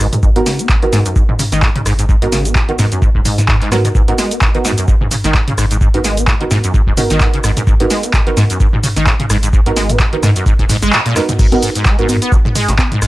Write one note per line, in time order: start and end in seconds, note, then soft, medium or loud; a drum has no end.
0.00 0.10 G#1 medium
0.00 0.33 B3 medium
0.00 0.33 D#4 medium
0.00 0.33 F#4 medium
0.00 0.33 A#4 medium
0.00 cross-stick medium
0.00 open hi-hat medium
0.00 shaker medium
0.13 0.18 G#2 medium
0.13 closed hi-hat medium
0.13 mid tom loud
0.13 shaker soft
0.23 0.34 G#1 loud
0.23 0.30 G#2 medium
0.23 kick loud
0.23 shaker soft
0.36 0.42 G#2 medium
0.36 0.41 B3 loud
0.36 0.41 D#4 medium
0.36 0.41 F#4 medium
0.36 0.41 A#4 loud
0.36 closed hi-hat medium
0.46 0.61 C#3 medium
0.46 snare medium
0.46 open hi-hat loud
0.46 shaker medium
0.59 0.71 B3 medium
0.59 closed hi-hat medium
0.59 shaker soft
0.69 0.77 G#2 medium
0.69 kick loud
0.69 clap loud
0.69 shaker soft
0.82 0.86 D#3 medium
0.82 0.91 B3 medium
0.82 0.91 D#4 medium
0.82 0.91 F#4 medium
0.82 0.91 A#4 medium
0.82 closed hi-hat soft
0.93 1.00 G#2 loud
0.93 1.03 G#2 medium
0.93 snare medium
0.93 open hi-hat loud
0.93 shaker medium
1.06 1.14 F#2 medium
1.06 closed hi-hat medium
1.06 shaker soft
1.16 1.23 G#2 medium
1.16 kick loud
1.16 shaker soft
1.29 1.35 G#2 medium
1.29 mid tom medium
1.39 1.44 C#3 medium
1.39 mid tom loud
1.39 open hi-hat loud
1.39 shaker medium
1.52 1.83 G#1 loud
1.52 1.64 D#3 medium
1.52 snare soft
1.52 closed hi-hat medium
1.52 shaker soft
1.62 1.70 G#2 medium
1.62 kick loud
1.62 clap loud
1.62 shaker soft
1.75 1.81 C#3 medium
1.75 closed hi-hat medium
1.75 mid tom medium
1.86 2.18 G#1 medium
1.86 1.93 G#2 loud
1.86 cross-stick medium
1.86 open hi-hat medium
1.86 shaker medium
1.99 2.04 G#2 medium
1.99 closed hi-hat medium
1.99 shaker soft
2.09 2.16 G#2 medium
2.09 kick loud
2.09 shaker soft
2.22 2.76 G#1 medium
2.22 2.28 G#2 medium
2.22 2.27 B3 medium
2.22 2.27 D#4 medium
2.22 2.27 F#4 medium
2.22 2.27 A#4 loud
2.22 closed hi-hat medium
2.32 2.47 C#3 medium
2.32 snare medium
2.32 open hi-hat loud
2.32 shaker medium
2.45 2.57 B3 medium
2.45 closed hi-hat medium
2.45 shaker soft
2.55 2.63 G#2 medium
2.55 kick loud
2.55 clap loud
2.55 shaker soft
2.69 2.72 D#3 medium
2.69 2.74 B3 medium
2.69 2.74 D#4 medium
2.69 2.74 F#4 medium
2.69 2.74 A#4 medium
2.69 closed hi-hat soft
2.79 2.86 G#2 loud
2.79 2.89 G#2 medium
2.79 snare medium
2.79 mid tom medium
2.79 open hi-hat medium
2.79 shaker medium
2.92 3.00 F#2 medium
2.92 closed hi-hat medium
2.92 shaker soft
3.02 3.09 G#2 medium
3.02 kick loud
3.02 shaker soft
3.15 3.23 D#1 loud
3.15 3.21 G#2 medium
3.15 kick medium
3.25 3.40 G#2 medium
3.25 mid tom medium
3.25 open hi-hat loud
3.25 shaker medium
3.38 3.92 G#2 loud
3.38 3.42 G#3 medium
3.38 snare soft
3.38 closed hi-hat medium
3.38 shaker soft
3.48 3.56 G#2 loud
3.48 kick loud
3.48 clap loud
3.48 shaker soft
3.61 3.70 G#2 loud
3.61 clap soft
3.61 closed hi-hat soft
3.72 3.76 F#3 loud
3.72 3.79 B3 loud
3.72 3.79 D#4 medium
3.72 3.79 F#4 medium
3.72 3.79 A#4 loud
3.72 cross-stick medium
3.72 snare medium
3.72 open hi-hat medium
3.72 shaker medium
3.85 3.88 B2 medium
3.85 closed hi-hat medium
3.85 mid tom medium
3.85 shaker soft
3.95 4.06 G#1 loud
3.95 4.02 G#2 medium
3.95 kick loud
3.95 shaker soft
4.08 4.14 G#2 medium
4.08 4.14 B3 loud
4.08 4.14 D#4 medium
4.08 4.14 F#4 medium
4.08 4.14 A#4 loud
4.08 closed hi-hat medium
4.18 4.33 G#3 medium
4.18 snare medium
4.18 open hi-hat loud
4.18 shaker medium
4.31 4.43 B3 medium
4.31 closed hi-hat medium
4.31 shaker soft
4.41 4.49 G#2 medium
4.41 kick loud
4.41 clap loud
4.41 shaker soft
4.54 4.58 D#3 medium
4.54 4.63 B3 medium
4.54 4.63 D#4 medium
4.54 4.63 F#4 medium
4.54 4.63 A#4 medium
4.54 closed hi-hat soft
4.65 4.72 G#2 loud
4.65 4.75 G#2 medium
4.65 snare medium
4.65 open hi-hat medium
4.65 shaker medium
4.78 4.86 F#2 medium
4.78 closed hi-hat medium
4.78 shaker soft
4.88 4.95 G#2 medium
4.88 kick loud
4.88 shaker soft
5.01 5.07 G#2 medium
5.01 mid tom medium
5.11 5.16 C#3 medium
5.11 mid tom medium
5.11 open hi-hat loud
5.11 shaker medium
5.24 5.55 G#1 loud
5.24 5.36 D#3 loud
5.24 snare soft
5.24 closed hi-hat medium
5.24 shaker soft
5.35 5.42 G#2 medium
5.35 kick loud
5.35 clap loud
5.35 shaker soft
5.48 5.53 C#3 medium
5.48 closed hi-hat medium
5.48 mid tom medium
5.58 5.90 G#1 loud
5.58 5.65 G#2 loud
5.58 cross-stick medium
5.58 open hi-hat medium
5.58 shaker medium
5.71 5.77 G#2 medium
5.71 closed hi-hat medium
5.71 shaker soft
5.81 5.88 G#2 medium
5.81 kick loud
5.81 shaker soft
5.94 6.48 G#1 medium
5.94 6.00 G#2 medium
5.94 6.00 B3 medium
5.94 6.00 D#4 medium
5.94 6.00 F#4 medium
5.94 6.00 A#4 medium
5.94 closed hi-hat medium
6.04 6.19 G#3 medium
6.04 snare medium
6.04 open hi-hat medium
6.04 shaker medium
6.17 6.29 B3 medium
6.17 closed hi-hat medium
6.17 shaker soft
6.28 6.35 G#2 medium
6.28 kick loud
6.28 clap loud
6.28 shaker soft
6.41 6.44 D#3 medium
6.41 6.46 B3 medium
6.41 6.46 D#4 medium
6.41 6.46 F#4 medium
6.41 6.46 A#4 medium
6.41 closed hi-hat soft
6.51 6.61 G#2 medium
6.51 6.58 G#2 loud
6.51 snare medium
6.51 mid tom medium
6.51 open hi-hat medium
6.51 shaker medium
6.64 6.72 F#2 medium
6.64 closed hi-hat medium
6.64 shaker soft
6.74 6.81 G#2 medium
6.74 kick loud
6.74 shaker soft
6.87 6.96 D#1 medium
6.87 6.93 G#2 medium
6.87 kick medium
6.97 7.02 C#3 medium
6.97 7.77 B3 medium
6.97 7.77 D#4 medium
6.97 7.77 F#4 medium
6.97 7.77 A#4 medium
6.97 mid tom medium
6.97 open hi-hat loud
6.97 shaker medium
7.10 7.19 G#1 loud
7.10 7.22 D#3 loud
7.10 snare soft
7.10 closed hi-hat medium
7.10 shaker soft
7.21 7.28 G#2 medium
7.21 kick loud
7.21 clap loud
7.21 shaker soft
7.34 7.39 C#3 medium
7.34 closed hi-hat medium
7.44 7.54 G#1 medium
7.44 7.51 G#2 medium
7.44 cross-stick medium
7.44 open hi-hat medium
7.44 shaker medium
7.57 7.63 G#2 medium
7.57 closed hi-hat medium
7.57 mid tom medium
7.57 shaker soft
7.67 7.78 G#1 loud
7.67 7.74 G#2 medium
7.67 kick loud
7.67 shaker soft
7.80 7.86 G#2 medium
7.80 7.86 B3 loud
7.80 7.86 D#4 medium
7.80 7.86 F#4 medium
7.80 7.86 A#4 loud
7.80 closed hi-hat medium
7.90 8.05 G#3 medium
7.90 snare medium
7.90 open hi-hat medium
7.90 shaker medium
8.03 8.15 B3 medium
8.03 closed hi-hat medium
8.03 shaker soft
8.14 8.21 G#2 medium
8.14 kick loud
8.14 clap loud
8.14 shaker soft
8.27 8.30 D#3 medium
8.27 8.35 B3 medium
8.27 8.35 D#4 medium
8.27 8.35 F#4 medium
8.27 8.35 A#4 medium
8.27 closed hi-hat soft
8.37 8.44 G#2 loud
8.37 8.48 G#2 medium
8.37 snare medium
8.37 open hi-hat medium
8.37 shaker medium
8.50 8.58 F#2 medium
8.50 closed hi-hat medium
8.50 shaker soft
8.60 8.67 G#2 medium
8.60 kick loud
8.60 shaker soft
8.73 8.79 G#2 medium
8.73 mid tom medium
8.83 8.88 C#3 medium
8.83 mid tom medium
8.83 open hi-hat loud
8.83 shaker medium
8.96 9.27 G#1 loud
8.96 9.08 D#3 loud
8.96 snare soft
8.96 closed hi-hat medium
8.96 shaker soft
9.07 9.14 G#2 medium
9.07 kick loud
9.07 clap loud
9.07 shaker soft
9.20 9.25 C#3 medium
9.20 closed hi-hat medium
9.20 mid tom medium
9.30 9.62 G#1 loud
9.30 9.37 G#2 loud
9.30 cross-stick medium
9.30 open hi-hat medium
9.30 shaker medium
9.43 9.49 G#2 medium
9.43 closed hi-hat medium
9.43 shaker soft
9.53 9.60 G#2 medium
9.53 kick loud
9.53 shaker soft
9.66 10.20 G#1 medium
9.66 9.72 G#2 medium
9.66 9.72 B3 medium
9.66 9.72 D#4 medium
9.66 9.72 F#4 medium
9.66 9.72 A#4 loud
9.66 closed hi-hat medium
9.76 9.91 G#3 medium
9.76 snare medium
9.76 open hi-hat loud
9.76 shaker medium
9.89 10.01 B3 medium
9.89 closed hi-hat medium
9.89 mid tom medium
9.89 shaker soft
10.00 10.07 G#2 medium
10.00 kick loud
10.00 clap loud
10.00 shaker soft
10.13 10.16 D#3 medium
10.13 10.18 B3 medium
10.13 10.18 D#4 medium
10.13 10.18 F#4 medium
10.13 10.18 A#4 medium
10.13 closed hi-hat soft
10.23 10.30 G#2 loud
10.23 10.34 G#2 medium
10.23 cross-stick medium
10.23 snare medium
10.23 mid tom medium
10.23 open hi-hat medium
10.23 shaker medium
10.36 10.44 F#2 medium
10.36 closed hi-hat medium
10.36 shaker soft
10.46 10.53 G#2 medium
10.46 kick loud
10.46 shaker soft
10.59 10.68 D#1 loud
10.59 10.65 G#2 medium
10.59 kick medium
10.59 closed hi-hat soft
10.69 10.77 G#2 loud
10.69 mid tom medium
10.69 open hi-hat loud
10.69 shaker medium
10.82 10.91 G#1 loud
10.82 10.94 G#3 loud
10.82 snare soft
10.82 closed hi-hat medium
10.82 shaker soft
10.93 11.00 G#2 medium
10.93 clap loud
10.93 shaker soft
11.06 11.14 A#2 loud
11.06 closed hi-hat medium
11.16 11.20 F#2 medium
11.16 11.23 B3 loud
11.16 11.23 D#4 medium
11.16 11.23 F#4 medium
11.16 11.23 A#4 loud
11.16 cross-stick medium
11.16 snare medium
11.16 open hi-hat medium
11.16 shaker medium
11.29 11.32 G#2 medium
11.29 closed hi-hat medium
11.29 mid tom medium
11.29 shaker soft
11.39 11.50 G#1 loud
11.39 11.46 G#2 medium
11.39 kick loud
11.39 crash loud
11.39 shaker soft
11.52 11.56 G#2 medium
11.52 11.58 B3 loud
11.52 11.58 D#4 medium
11.52 11.58 F#4 medium
11.52 11.58 A#4 loud
11.52 closed hi-hat medium
11.52 high conga medium
11.62 11.70 G#2 medium
11.62 open hi-hat loud
11.62 shaker medium
11.75 11.87 G#2 medium
11.75 closed hi-hat medium
11.75 shaker soft
11.86 11.97 G#3 medium
11.86 kick loud
11.86 clap loud
11.86 shaker soft
11.99 12.07 G#2 medium
11.99 12.07 B3 medium
11.99 12.07 D#4 medium
11.99 12.07 F#4 medium
11.99 12.07 A#4 loud
11.99 closed hi-hat soft
12.09 12.16 G#2 medium
12.09 12.20 G#2 medium
12.09 open hi-hat medium
12.09 high conga soft
12.09 shaker medium
12.22 12.34 B3 medium
12.22 closed hi-hat medium
12.22 shaker soft
12.32 12.37 G#2 medium
12.32 kick loud
12.32 shaker soft
12.45 12.49 G#2 medium
12.45 mid tom loud
12.56 12.70 G#3 medium
12.56 mid tom loud
12.56 open hi-hat loud
12.56 shaker medium
12.68 12.99 G#1 loud
12.68 12.74 G#2 medium
12.68 snare soft
12.68 closed hi-hat medium
12.68 shaker soft
12.79 12.83 B3 medium
12.79 kick loud
12.79 clap loud
12.79 high conga medium
12.79 shaker soft
12.92 13.00 G#2 medium
12.92 closed hi-hat medium
12.92 mid tom loud
13.02 13.07 G#1 medium
13.02 13.07 G#2 medium
13.02 cross-stick medium
13.02 open hi-hat medium
13.02 shaker medium